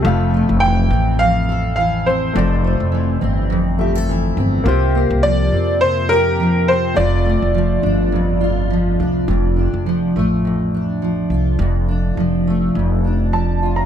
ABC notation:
X:1
M:4/4
L:1/16
Q:"Swing 16ths" 1/4=104
K:F
V:1 name="Upright piano"
z4 g4 f4 f2 c2- | c6 z8 z2 | z4 d4 c2 B4 c2 | d12- d2 z2 |
z16 | z12 a3 b |]
V:2 name="Grand piano"
[F,A,f]16 | [F,A,d]8- [F,A,d]2 [F,A,e]6 | [B,Fc]16 | [A,Fd]16 |
z16 | z16 |]
V:3 name="Steel-string acoustic guitar"
[F,,A]2 A,2 E,2 C2 F,,2 A2 E,2 C2 | [F,,A]2 A,2 E,2 C2 F,,2 G A E,2 C2 | [C,G]2 B,2 F,2 C2 C,2 G2 F,2 C2 | [F,,F]2 A,2 F,2 D2 F,,2 F2 F,2 D2 |
F,,2 D2 F,2 A,2 F,,2 D2 F,2 F2 | F,,2 D2 F,2 A,2 F,,2 D2 F,2 F2 |]
V:4 name="Upright bass" clef=bass
F,,,3 F,,,3 A,,,8- A,,,2 | F,,,3 F,,,3 G,,,8 G,,,2 | C,,3 C,,3 F,,8- F,,2 | F,,,3 F,,,3 G,,,8 C,,2 |
F,,,3 F,,,3 A,,,8 C,,2 | F,,,4 F,,,4 F,,,8 |]